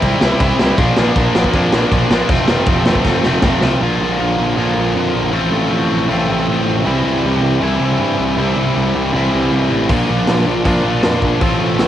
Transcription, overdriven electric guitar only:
0.01 C3 G3 C4 E4
0.20 C3 G3 C4 E4
0.40 C3 G3 C4 E4
0.59 C3 G3 C4 E4
0.78 A#2 F3 A#3 D4
0.98 A#2 F3 A#3 D4
1.16 A#2 F3 A#3 D4
1.35 A#2 F3 A#3 D4
1.54 A#2 F3 A#3 D4
1.73 A#2 F3 A#3 D4
1.91 A#2 F3 A#3 D4
2.10 A#2 F3 A#3 D4
2.29 F2 C3 F3 A3 C4
2.48 F2 C3 F3 A3 C4
2.67 F2 C3 F3 A3 C4
2.86 F2 C3 F3 A3 C4
3.06 F2 C3 F3 A3 C4
3.24 F2 C3 F3 A3 C4
3.43 F2 C3 F3 A3 C4
3.62 F2 C3 F3 A3 C4
3.81 A#2 D3 F3 A#3 F4
4.56 A#2 D3 F3 A#3 F4
5.32 A2 F3 A3 C4 F4
6.08 A2 F3 A3 C4 F4
6.84 C3 E3 G3 C4 E4
7.60 C3 E3 G3 C4 E4
8.37 C3 E3 G3 C4 E4
9.13 C3 E3 G3 C4 E4
9.89 A#2 F3 A#3 D4 F4
10.64 A#2 F3 A#3 D4 F4
11.40 A2 F3 A3 C4 F4

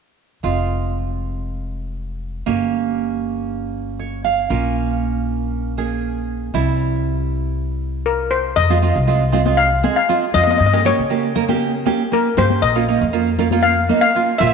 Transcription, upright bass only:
0.44 F1
2.47 G1
4.50 A#1
6.54 C2
8.57 F2
8.96 C2
10.34 F2
10.60 G2
10.99 C#3
12.37 G2
12.62 A#1
13.01 F2
14.40 A#1

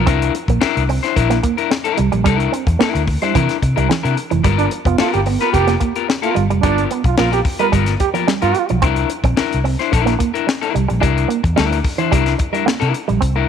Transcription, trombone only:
4.58 D4
4.85 F4
4.99 F4
5.13 G4
5.40 A#4
5.53 G4
6.23 F4
6.61 D4
7.05 F4
7.18 F4
7.33 G4
7.60 A#4
8.00 G4
8.42 F4

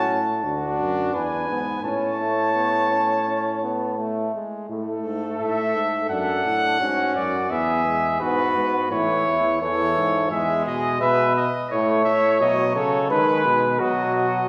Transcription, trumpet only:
Already playing: A5
1.13 G#5
1.84 A5
5.39 E5
6.10 F#5
7.15 D5
7.51 E5
8.20 B4
8.91 C#5
9.62 C#5
10.31 E5
10.66 D#5
11.01 E5
11.36 D#5
11.71 C#5
12.05 E5
12.41 D#5
12.75 C#5
13.10 B4
13.81 D#5
14.14 D#5

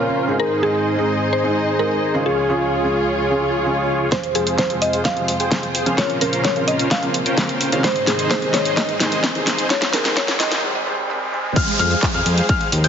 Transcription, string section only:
Already playing: A#2 A#3 C#4 F4 G#4
0.40 G#2 G#3 C4 D#4 D#5
2.26 C#2 C#3 F4 G#4
4.12 F2 C3 G#3 F4 C5
5.98 A#2 A#3 C#4
7.84 G#2 G#3 C4 D#4 D#5
9.70 C#2 C#3 F4 G#4
11.56 F3 G#3 C5

